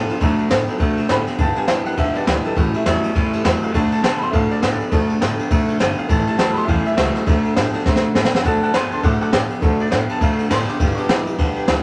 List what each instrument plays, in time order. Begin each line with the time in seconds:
Already playing: clean electric guitar D3 B3
0.08 steel-string acoustic guitar D4 F#4 A4, honky-tonk piano F4, muted upright bass stroke, ride
0.20 upright bass D2, steel-string acoustic guitar D3 A3 D4 F#4 A4, clean electric guitar D3 A3, honky-tonk piano F#3 D4, kick, ride
0.37 steel-string acoustic guitar D4 F#4 A4, ride
0.49 upright bass A2, steel-string acoustic guitar D3 A3 D4 F#4 A4, clean electric guitar D3 B3, snare, ride
0.66 honky-tonk piano F#3 A3 D4, steel-string acoustic guitar D4 F#4 A4, muted upright bass stroke, ride
0.78 clean electric guitar D3 A3, steel-string acoustic guitar A3 D4 F#4 A4, kick, ride
0.96 upright bass B2, steel-string acoustic guitar D4 F#4 A4, ride
1.08 upright bass A2, steel-string acoustic guitar D3 A3 D4 F#4 A4, clean electric guitar D3 B3, honky-tonk piano B5, snare, ride
1.26 steel-string acoustic guitar D4 F#4 A4, muted upright bass stroke, snare, ride
1.38 upright bass G1, clean electric guitar G2 D3, steel-string acoustic guitar G3 D4 G4 B4, honky-tonk piano A5, kick, ride
1.56 honky-tonk piano G3 B3 D4 G#5, steel-string acoustic guitar D4 G4 B4, muted upright bass stroke, ride
1.68 upright bass B1, clean electric guitar G2 E3, steel-string acoustic guitar G3 D4 G4 B4, honky-tonk piano G5, snare, ride
1.85 upright bass G1, steel-string acoustic guitar D4 G4 B4, honky-tonk piano F#5, ride
1.97 upright bass D2, clean electric guitar G2 D3, steel-string acoustic guitar G3 D4 G4 B4, honky-tonk piano E5, kick, ride
2.14 honky-tonk piano G3 B3 D4 D5, steel-string acoustic guitar D4 G4 B4, ride
2.26 upright bass D2, clean electric guitar G2 E3, steel-string acoustic guitar G3 D4 G4 B4, honky-tonk piano B4, snare, ride
2.43 steel-string acoustic guitar D4 G4 B4, honky-tonk piano A4, muted upright bass stroke, ride
2.56 upright bass A1, steel-string acoustic guitar A2 E3 G3 C#4 G4 A4, clean electric guitar A2 E3, honky-tonk piano F#4, kick, ride
2.74 steel-string acoustic guitar G3 C#4 G4 A4, honky-tonk piano E4, muted upright bass stroke, ride
2.86 upright bass E2, steel-string acoustic guitar A2 E3 G3 C#4 G4 A4, clean electric guitar A2 F#3, honky-tonk piano C#4 E4, snare, ride
3.03 steel-string acoustic guitar G3 C#4 G4 A4, honky-tonk piano B3 C#4, ride
3.15 upright bass F#2, clean electric guitar A2 E3, steel-string acoustic guitar G3 C#4 G4 A4, kick, ride
3.33 upright bass G2, steel-string acoustic guitar G3 C#4 G4 A4, ride
3.45 upright bass E2, clean electric guitar A2 F#3, steel-string acoustic guitar A2 E3 G3 C#4 G4 A4, snare, ride
3.62 steel-string acoustic guitar G3 C#4 G4 A4, honky-tonk piano F5, ride
3.73 upright bass D2, clean electric guitar D3 A3, steel-string acoustic guitar D3 A3 D4 F#4 A4, honky-tonk piano F#3 A3 D4 A5, kick, ride
3.92 steel-string acoustic guitar D4 F#4 A4, honky-tonk piano A5, ride
4.03 upright bass G2, clean electric guitar D3 B3, steel-string acoustic guitar D3 A3 D4 F#4 A4, honky-tonk piano A5, snare, ride
4.19 upright bass D2, honky-tonk piano F#3 A3 D4 B5, steel-string acoustic guitar D4 F#4 A4, ride
4.23 honky-tonk piano C6
4.30 upright bass A2, clean electric guitar D3 A3, steel-string acoustic guitar A3 D4 F#4, honky-tonk piano E5, kick, ride
4.35 steel-string acoustic guitar A4, honky-tonk piano F5
4.50 steel-string acoustic guitar D4 F#4 A4, honky-tonk piano D5, muted upright bass stroke, ride
4.62 upright bass A2, clean electric guitar D3 B3, steel-string acoustic guitar D3 A3 D4 F#4 A4, snare, ride
4.80 steel-string acoustic guitar D4 F#4 A4, muted upright bass stroke, ride
4.91 upright bass D2, steel-string acoustic guitar D3 A3 D4 F#4 A4, clean electric guitar D3 A3, honky-tonk piano F#3 A3 D4, kick, ride
5.09 steel-string acoustic guitar D4 F#4 A4, muted upright bass stroke, ride
5.21 upright bass A2, clean electric guitar D3 B3, steel-string acoustic guitar D3 A3 D4 F#4 A4, snare, ride
5.39 steel-string acoustic guitar D4 F#4 A4, muted upright bass stroke, ride
5.50 clean electric guitar D3 A3, steel-string acoustic guitar A3 D4 F#4 A4, kick, ride
5.68 upright bass B2, steel-string acoustic guitar D4 F#4 A4, ride
5.79 upright bass G1, steel-string acoustic guitar D3 A3 D4 F#4 A4, clean electric guitar D3 B3, snare, ride
5.97 steel-string acoustic guitar D4 F#4 A4, honky-tonk piano F5, muted upright bass stroke, ride
6.09 upright bass A1, steel-string acoustic guitar A2 E3 G3 C#4 G4 A4, clean electric guitar A2 E3, honky-tonk piano A5, kick, ride
6.26 steel-string acoustic guitar G3 C#4 G4 A4, honky-tonk piano A5, muted upright bass stroke, ride
6.38 upright bass D2, steel-string acoustic guitar A2 E3 G3 C#4 G4 A4, clean electric guitar A2 F#3, honky-tonk piano A5, snare, ride
6.53 upright bass A1, honky-tonk piano B3 C#4 B5, steel-string acoustic guitar C#4 G4 A4, ride
6.57 steel-string acoustic guitar G3, honky-tonk piano C6
6.65 upright bass E2, clean electric guitar A2 E3, steel-string acoustic guitar G3 C#4 G4, honky-tonk piano E5, kick, ride
6.69 steel-string acoustic guitar A4, honky-tonk piano F5
6.85 steel-string acoustic guitar G3 C#4 G4 A4, honky-tonk piano E5, ride
6.97 upright bass C#2, steel-string acoustic guitar A2 E3 G3 C#4 G4 A4, clean electric guitar A2 F#3, snare, ride
7.14 steel-string acoustic guitar G3 C#4 G4 A4, snare, ride
7.26 upright bass D2, steel-string acoustic guitar D3 A3 D4 F#4 A4, clean electric guitar D3 A3, honky-tonk piano F#3 A3 D4, kick, ride
7.44 steel-string acoustic guitar D4 F#4 A4, muted upright bass stroke, ride
7.56 upright bass A2, clean electric guitar D3 B3, steel-string acoustic guitar D3 A3 D4 F#4 A4, snare, ride
7.73 honky-tonk piano F#3 A3 D4, steel-string acoustic guitar D4 F#4 A4, muted upright bass stroke, ride
7.85 upright bass B2, clean electric guitar D3 A3, steel-string acoustic guitar A3 D4 F#4 A4, kick, snare
7.96 snare
8.03 upright bass B2, steel-string acoustic guitar D4 F#4 A4
8.14 upright bass A2, clean electric guitar D3 B3, steel-string acoustic guitar D3 A3 D4 F#4 A4, snare
8.25 snare
8.32 steel-string acoustic guitar D4 F#4 A4, muted upright bass stroke, snare
8.42 upright bass D2, steel-string acoustic guitar D3 A3 D4 F#4 A4, clean electric guitar D3 A3, honky-tonk piano F#3 A3 D4 F#5 G#5, kick, ride
8.46 honky-tonk piano A5
8.62 steel-string acoustic guitar D4 F#4 A4, honky-tonk piano F#5 A5, muted upright bass stroke, ride
8.74 upright bass G2, steel-string acoustic guitar D3 D4 F#4 A4, clean electric guitar D3 B3, honky-tonk piano A5 C6, snare, ride
8.91 upright bass D2, steel-string acoustic guitar D4 F#4 A4, honky-tonk piano A5 C6, ride
9.03 upright bass A2, clean electric guitar D3 A3, steel-string acoustic guitar A3 D4 F#4 A4, honky-tonk piano F#5 D6, kick, ride
9.20 honky-tonk piano F#3 A3 D4 F#5 D6, steel-string acoustic guitar D4 F#4 A4, muted upright bass stroke, ride
9.32 upright bass A2, steel-string acoustic guitar D3 A3 D4 F#4, clean electric guitar D3 B3, honky-tonk piano D6, snare, ride
9.50 steel-string acoustic guitar D4 F#4 A4, ride
9.61 upright bass D2, clean electric guitar D3 A3, steel-string acoustic guitar D3 A3 D4 F#4 A4, honky-tonk piano F#3 A3 D4, kick, ride
9.79 steel-string acoustic guitar D4 F#4 A4, honky-tonk piano D5, muted upright bass stroke, ride
9.91 upright bass A2, clean electric guitar D3 B3, steel-string acoustic guitar D3 A3 D4 F#4 A4, honky-tonk piano F5, snare, ride
10.09 steel-string acoustic guitar D4 F#4 A4, honky-tonk piano A5, muted upright bass stroke, ride
10.21 clean electric guitar D3 A3, steel-string acoustic guitar A3 D4 F#4 A4, honky-tonk piano F5, kick, ride
10.38 upright bass B2, steel-string acoustic guitar D4 F#4 A4, ride
10.50 upright bass A2, clean electric guitar D3 B3, steel-string acoustic guitar D3 A3 D4 F#4 A4, honky-tonk piano C6, snare, ride
10.68 steel-string acoustic guitar D4 F#4 A4, honky-tonk piano D6, muted upright bass stroke, snare, ride
10.80 upright bass G1, clean electric guitar G2 D3, steel-string acoustic guitar G3 D4 G4 B4, kick, ride
10.95 honky-tonk piano G3 B3 D4 C#6, steel-string acoustic guitar B4, ride
10.99 steel-string acoustic guitar D4 G4, honky-tonk piano D6
11.09 upright bass B1, clean electric guitar G2 E3, steel-string acoustic guitar G3 D4 G4 B4, snare, ride
11.26 upright bass G1, steel-string acoustic guitar D4 G4 B4, ride
11.38 upright bass D2, clean electric guitar G2 D3, steel-string acoustic guitar G3 D4 G4 B4, kick, ride
11.55 steel-string acoustic guitar D4 G4 B4, muted upright bass stroke, ride
11.67 upright bass D2, clean electric guitar G2 E3, steel-string acoustic guitar G3 D4 G4 B4, snare, ride